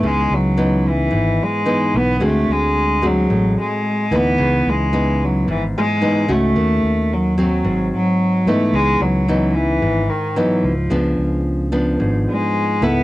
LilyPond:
<<
  \new Staff \with { instrumentName = "Nylon-string guitar" } { \time 4/4 \key cis \minor \tempo 4 = 110 << { <e b dis'>4 <e b dis'>2 <e b dis'>4 | <gis c' fis'>4. <gis c' fis'>2 <e b dis'>8~ | <e b dis'>4 <e b dis'>2 <e b dis'>8 <a cis' fis'>8~ | <a cis' fis'>4. <fis bis>2 <e b dis'>8~ |
<e b dis'>4 <e b dis'>4. r8 <e b dis'>8 r8 | <eis b d'>4. <eis b d'>2 <b e' a'>8 | } \\ { cis2 gis,2 | d2 a,2 | cis2 gis,2 | dis2 gis,2 |
cis2 gis,2 | cis2 gis,2 | } >> }
  \new Staff \with { instrumentName = "Cello" } { \clef bass \time 4/4 \key cis \minor gis8 fis4 e4 gis4 b8 | a8 gis4 fis4 gis4 b8~ | b8 gis4 fis8 e8 gis4 a8~ | a4 fis8 fis4 fis4 a8 |
gis8 fis4 e4 dis8 fis8 eis8~ | eis8 r2 gis4 b8 | }
  \new Staff \with { instrumentName = "Fingered electric bass" } { \clef bass \time 4/4 \key cis \minor cis,8 cis,4. gis,,8 r4 b,,8 | d,8 d,4. a,,8 r4 d,8 | cis,8 cis,4. gis,,8 r4 cis,8 | dis,8 dis,4. gis,,8 r4 gis,8 |
cis,8 cis,4. gis,,8 r4 cis,8 | cis,8 cis,4. gis,,8 r4 cis,8 | }
>>